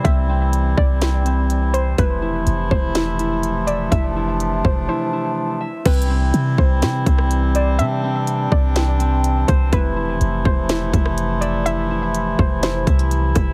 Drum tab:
CC |------------------------------------------------|------------------------------------------------|------------------------------------------------|x-----------------------------------------------|
HH |x-----------x-----------x-----x-----x-----x-----|x-----------x-----------x-----x-----x-----x-----|x-----------x-----------------------------------|x-x-x-------x-----------x-----x-----x-----x-----|
SD |------------------------o-----------------------|------------------------o-----------------------|------------------------------------------------|------------------------o--------r--------------|
BD |o-----------------o-----------------------------|o-----------------o-----------------------------|o-----------------o-----------------------------|o-----------------o-----------o-----------------|

CC |------------------------------------------------|------------------------------------------------|------------------------------------------------|
HH |x-----------x-----------x-----x-----x-----x-----|x-----------x-----------x-----x-----x-----x-----|x-----------x-----------x-----x--x--x-----x-----|
SD |------------------------o-----------------------|------------------------o--------r--------------|------------------------o-----------------r-----|
BD |------------------o-----------------------o-----|o-----------------o-----------o-----------------|------------------o-----------o-----------o-----|